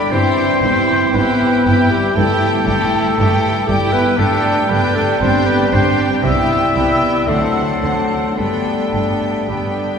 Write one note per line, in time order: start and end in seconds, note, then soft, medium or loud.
0.00 0.13 D3 soft
0.00 0.10 D4 medium
0.00 0.12 B5 medium
0.05 0.13 D5 medium
0.10 0.18 G1 medium
0.10 0.19 G2 medium
0.10 3.92 E3 medium
0.10 1.12 C4 medium
0.10 0.62 E4 medium
0.10 0.61 G4 medium
0.10 1.13 C5 medium
0.10 3.91 G5 medium
0.10 0.61 G5 soft
0.10 1.15 C6 medium
0.62 0.70 G1 medium
0.62 0.70 G2 soft
0.62 1.13 E4 soft
0.62 1.12 G4 medium
0.62 1.13 G5 soft
1.13 1.22 G1 medium
1.13 1.22 G2 medium
1.13 1.90 B3 medium
1.13 1.64 E4 medium
1.13 1.64 G4 soft
1.13 1.92 B4 medium
1.13 1.64 G5 soft
1.13 1.90 B5 medium
1.65 1.73 G1 medium
1.65 1.73 G2 medium
1.65 2.14 E4 soft
1.65 2.14 G4 soft
1.65 2.15 G5 soft
1.91 2.16 G3 medium
1.91 2.18 G4 medium
1.91 2.17 G5 medium
2.15 2.24 G1 medium
2.15 2.23 G2 medium
2.15 3.51 A3 medium
2.15 2.65 E4 medium
2.15 2.65 G4 medium
2.15 3.69 A4 medium
2.15 2.66 G5 medium
2.15 3.68 A5 medium
2.66 2.74 G1 medium
2.66 2.74 G2 soft
2.66 3.16 E4 medium
2.66 3.16 G4 medium
2.66 3.16 G5 soft
3.17 3.25 G1 medium
3.17 3.25 G2 soft
3.17 3.67 E4 soft
3.17 3.67 G4 medium
3.17 3.67 G5 medium
3.66 3.76 G1 medium
3.66 3.76 G2 medium
3.66 3.93 G3 medium
3.66 4.18 E4 medium
3.66 3.94 G4 medium
3.66 4.17 G4 medium
3.66 3.92 G5 medium
3.66 4.18 G5 medium
3.92 4.18 B3 medium
3.92 4.18 B4 medium
3.92 4.19 B5 medium
4.17 4.26 G1 medium
4.17 4.26 G2 medium
4.17 6.19 G3 medium
4.17 4.70 A3 medium
4.17 4.69 D4 medium
4.17 4.68 G4 medium
4.17 4.72 A4 medium
4.17 6.24 G5 medium
4.17 4.69 G5 medium
4.17 4.70 A5 medium
4.69 4.78 G1 medium
4.69 4.78 G2 medium
4.69 4.95 B3 medium
4.69 5.20 D4 medium
4.69 5.20 G4 medium
4.69 4.97 B4 medium
4.69 5.21 G5 soft
4.69 4.95 B5 medium
4.95 5.21 A3 medium
4.95 5.21 A4 medium
4.95 5.23 A5 medium
5.20 5.30 G1 medium
5.20 5.30 G2 medium
5.20 5.46 C4 medium
5.20 5.71 D4 medium
5.20 5.72 G4 medium
5.20 5.50 C5 medium
5.20 5.71 G5 medium
5.20 5.48 C6 medium
5.46 5.72 B3 medium
5.46 5.74 B4 medium
5.46 5.74 B5 medium
5.72 5.81 G1 soft
5.72 5.80 G2 medium
5.72 6.23 C4 medium
5.72 6.22 D4 soft
5.72 6.23 G4 medium
5.72 6.06 C5 medium
5.72 6.21 G5 soft
5.72 6.01 C6 medium
6.22 6.31 C2 medium
6.22 6.31 C3 medium
6.22 7.30 G3 soft
6.22 6.75 B3 soft
6.22 7.29 E4 medium
6.22 6.75 G4 medium
6.22 7.30 E5 medium
6.22 6.74 G5 medium
6.22 7.27 B5 soft
6.22 7.31 E6 medium
6.75 6.84 C2 soft
6.75 6.83 C3 soft
6.75 7.28 B3 soft
6.75 7.28 G4 soft
6.75 7.28 G5 soft
7.28 7.37 D2 soft
7.28 7.36 D3 soft
7.28 8.37 F#3 soft
7.28 8.36 A3 medium
7.28 7.82 C4 soft
7.28 7.80 D4 soft
7.28 8.36 A4 medium
7.28 7.82 F#5 soft
7.28 8.38 A5 medium
7.28 8.40 C6 soft
7.81 7.90 D2 soft
7.81 7.90 D3 soft
7.81 8.37 C4 soft
7.81 8.34 D4 soft
7.81 8.37 F#5 soft
8.36 8.46 G1 soft
8.36 8.46 G2 soft
8.36 9.47 G3 soft
8.36 9.47 A3 soft
8.36 8.92 B3 soft
8.36 8.91 D4 soft
8.36 9.50 A4 medium
8.36 8.93 G5 soft
8.36 9.48 A5 soft
8.36 9.50 B5 soft
8.93 9.01 G1 soft
8.93 9.02 G2 soft
8.93 9.48 B3 soft
8.93 9.49 D4 soft
8.93 9.49 G5 soft
9.49 9.57 G1 soft
9.49 9.57 G2 soft
9.49 9.99 G3 soft
9.49 9.99 B3 soft
9.49 9.99 D4 soft
9.49 9.99 G4 soft
9.49 9.99 G5 soft
9.49 9.99 B5 soft